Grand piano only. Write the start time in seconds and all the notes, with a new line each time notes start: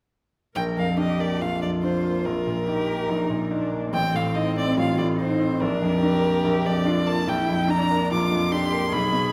0.56 A#1
0.77 F2
0.97 D4
1.19 A#3
1.42 A#1
1.63 F2
1.84 D4
2.05 A#3
2.26 A#1
2.47 A#2
2.68 D#4
2.89 A#3
3.09 A#1
3.30 A#2
3.51 D#4
3.72 A#3
3.93 A1
4.14 A2
4.35 D#4
4.57 C4
4.77 A1
4.98 A2
5.19 D#4
5.40 C4
5.61 A#1
5.82 F2
6.03 D4
6.26 A#3
6.45 A#1
6.66 F2
6.85 D4
7.07 A#3
7.28 A#1
7.49 F2
7.68 D4
7.91 A#3
8.12 A#1
8.32 F2
8.52 D4
8.72 A#3
8.92 B1
9.13 B2